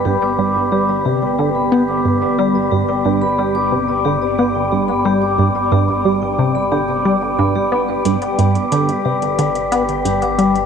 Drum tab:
HH |----------------|----------------|----------------|xxxxxx-xxxxxxxxx|